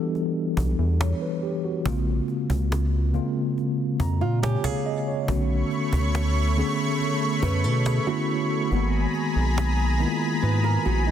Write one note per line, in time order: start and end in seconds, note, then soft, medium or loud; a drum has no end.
0.00 1.87 E3 medium
0.00 1.88 G3 medium
0.00 1.87 B3 medium
0.00 1.87 D4 medium
0.00 1.64 F#4 loud
0.00 1.43 G4 medium
0.00 1.04 A4 loud
0.15 cajon slap soft
0.57 0.75 B1 loud
0.57 cajon bass medium
0.79 1.13 E2 loud
1.00 1.20 C#5 medium
1.00 cajon slap loud
1.22 1.42 B4 medium
1.43 1.63 G4 medium
1.64 2.05 F#4 medium
1.85 2.21 A#1 loud
1.85 3.04 C#3 medium
1.85 3.04 G#3 medium
1.85 3.05 A#3 medium
1.85 3.05 C4 medium
1.85 3.05 F4 loud
1.85 cajon bass loud
2.28 cajon slap soft
2.50 3.20 C#2 medium
2.50 cajon bass medium
2.72 cajon slap loud
3.13 4.52 C#3 medium
3.13 4.53 G#3 medium
3.13 4.53 A#3 medium
3.13 4.53 C4 medium
3.13 4.53 F4 medium
3.13 cajon slap soft
3.58 cajon slap soft
4.00 4.23 F2 medium
4.00 4.40 A#5 medium
4.00 cajon bass medium
4.21 4.56 A#2 loud
4.21 4.42 F4 medium
4.43 4.64 G4 medium
4.43 4.63 C#5 medium
4.43 4.63 G#5 medium
4.43 cajon slap loud
4.64 5.25 G#4 medium
4.64 4.84 F5 medium
4.64 cajon bass loud
4.86 5.06 D#5 medium
5.07 5.48 C#5 medium
5.28 5.63 B1 loud
5.28 5.35 C#3 medium
5.28 8.68 A3 medium
5.28 6.47 A3 medium
5.28 6.47 B3 medium
5.28 6.48 C#4 medium
5.28 6.48 F#4 loud
5.28 8.68 C#5 medium
5.28 8.68 B5 medium
5.28 8.68 C#6 medium
5.28 cajon bass loud
5.34 6.50 D3 medium
5.71 cajon slap soft
5.93 6.63 D2 medium
5.93 cajon bass medium
6.15 cajon slap loud
6.56 7.95 D3 medium
6.56 7.96 A3 medium
6.56 7.96 B3 medium
6.56 7.96 C#4 medium
6.56 7.96 G#4 loud
6.56 cajon slap soft
7.01 cajon slap soft
7.43 7.66 F#2 medium
7.43 7.64 B4 medium
7.43 cajon bass medium
7.64 7.99 B2 loud
7.64 7.85 A4 medium
7.85 8.06 G#4 medium
7.85 cajon slap loud
8.06 8.66 D3 medium
8.06 8.66 A3 medium
8.06 8.67 B3 medium
8.06 8.67 C#4 medium
8.06 8.67 E4 loud
8.06 8.68 F#4 medium
8.71 9.06 G#1 loud
8.71 9.90 D#3 medium
8.71 9.90 G#3 medium
8.71 9.90 A#3 medium
8.71 9.91 B3 medium
8.71 9.91 F#4 medium
8.71 11.11 G#4 medium
8.71 11.11 G#5 medium
8.71 11.11 A#5 medium
8.71 11.11 B5 medium
8.71 cajon slap soft
9.14 cajon slap soft
9.36 10.06 B1 loud
9.58 cajon slap loud
9.99 11.11 D#3 medium
9.99 11.11 G#3 medium
9.99 11.11 A#3 medium
9.99 11.11 B3 medium
9.99 10.07 E4 medium
9.99 cajon slap soft
10.08 11.11 F4 loud
10.42 10.78 G#2 loud
10.42 10.63 B4 medium
10.42 cajon slap soft
10.64 10.84 A#4 medium
10.86 11.11 A#1 medium
10.86 11.06 F#4 medium
10.86 cajon slap soft
11.07 11.11 D#4 medium